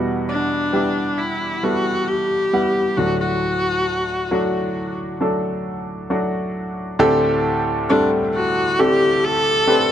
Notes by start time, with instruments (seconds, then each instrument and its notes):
Already playing: grand piano E2 B2 G3 B3 E4 F#4
0.29 viola D4
0.73 grand piano G3 B3 E4 G4
1.18 viola E4
1.63 grand piano G3 B3 E4 A4, viola F#4
2.08 viola G4
2.53 grand piano G3 B3 E4 F#5
2.97 grand piano D2 A2 F#3 A3 D4 F#4, viola F#4
3.21 viola F#4
4.31 grand piano F#3 A3 D4 F#4
5.21 grand piano F#3 A3 D4 A4
6.10 grand piano F#3 A3 D4 F#4
6.99 grand piano D2 A2 A3 C4 D4 G4 A4
7.90 grand piano G3 A3 C4 D4 A4, viola D4
8.34 viola F#4
8.79 grand piano A3 C4 D4 G4 A4, viola G4
9.24 viola A4
9.67 grand piano A3 C4 D4 G4 B4